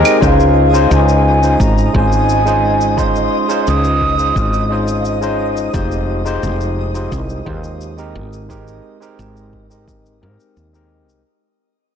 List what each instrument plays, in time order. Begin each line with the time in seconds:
Already playing: tine electric piano G#3 C4 D#4 G4 A#4, synth texture G#4, flute D#5
0.05 closed hi-hat, claves, shaker
0.21 fretless electric bass C#2, tine electric piano G#3 C#4 D#4 F4 C5, synth texture D#5, flute G5, kick, shaker
0.27 flute F5
0.40 shaker
0.73 tine electric piano G#3 C#4 D#4 F4 C5, shaker
0.91 fretless electric bass C#2, flute G#5 A#5, shaker
1.09 shaker
1.42 tine electric piano G#3 C#4 D#4 F4 C5, shaker
1.60 fretless electric bass G#1, flute A#5, kick, shaker
1.78 shaker
1.93 fretless electric bass G#1, tine electric piano G#3 C#4 D#4 F4 C5, flute G#5, kick
2.12 shaker
2.30 shaker
2.45 tine electric piano G#3 C#4 D#4 F4 C5, shaker
2.81 shaker
2.97 tine electric piano G#3 C#4 D#4 F4 C5, flute C6, kick, shaker
3.16 shaker
3.48 tine electric piano G#3 C#4 D#4 F4 C5, shaker
3.67 fretless electric bass C#2, flute D#6, shaker
3.85 shaker
4.01 kick
4.17 tine electric piano G#3 C#4 D#4 F4 C5, shaker
4.36 fretless electric bass G#1, kick, shaker
4.54 shaker
4.69 tine electric piano G#3 C#4 D#4 F4 C5
4.88 shaker
4.99 flute F5
5.05 flute D#5, shaker
5.21 tine electric piano G#3 C#4 D#4 F4 C5, shaker
5.57 shaker
5.73 fretless electric bass F1, tine electric piano G#3 D#4 F4 G4 C5, kick, shaker
5.92 shaker
6.25 tine electric piano G#3 D#4 F4 G4 C5, shaker
6.43 fretless electric bass F1, shaker
6.61 shaker
6.94 tine electric piano G#3 D#4 F4 G4 C5, shaker
7.12 fretless electric bass C2, kick, shaker
7.29 shaker
7.45 fretless electric bass D#2, tine electric piano G#3 D#4 F4 G4 C5, kick
7.64 shaker
7.81 shaker
7.97 tine electric piano G#3 C4 D#4 G4 A#4, shaker
8.15 fretless electric bass G#1
8.33 shaker
8.48 tine electric piano G#3 C4 D#4 G4 A#4, kick, shaker
8.68 shaker
9.00 tine electric piano G#3 C4 D#4 G4 A#4, shaker
9.19 fretless electric bass G#1, shaker
9.37 shaker
9.53 kick
9.70 tine electric piano G#3 C4 D#4 G4 A#4, shaker
9.88 kick, shaker
10.06 shaker
10.21 fretless electric bass G#2, tine electric piano G#3 C4 D#4 G4 A#4
10.40 shaker
10.57 fretless electric bass D#2, shaker
10.73 tine electric piano G#3 C4 D#4 G4 A#4, shaker
11.08 fretless electric bass C2, shaker